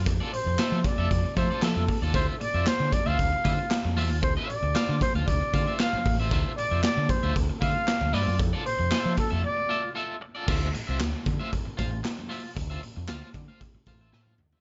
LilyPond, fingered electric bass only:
\new Staff \with { instrumentName = "Fingered electric bass" } { \clef bass \time 4/4 \key d \minor \tempo 4 = 115 f,16 r8 f,16 r16 f16 r16 f,16 f,16 r16 f16 r16 f16 f,16 r16 ees,16 | d,16 r8 f,16 r16 d16 r16 d,16 d,16 r16 d16 r8 f,16 e,16 ees,16 | d,16 r8 d,16 r16 d16 r16 d,16 d,16 r16 d16 r8. a,,8 | d,16 r8 f,16 r16 d16 r16 d,16 d,16 r16 d16 r8 d,16 g,16 fis,16 |
f,16 r8 f,16 r16 f16 r16 f,16 r2 | d,8 r16 c,16 d,16 r16 d16 r8. a,,8 r4 | d,8 r16 f,16 d,16 r16 d16 r8. a,,8 a,8 d,16 r16 | }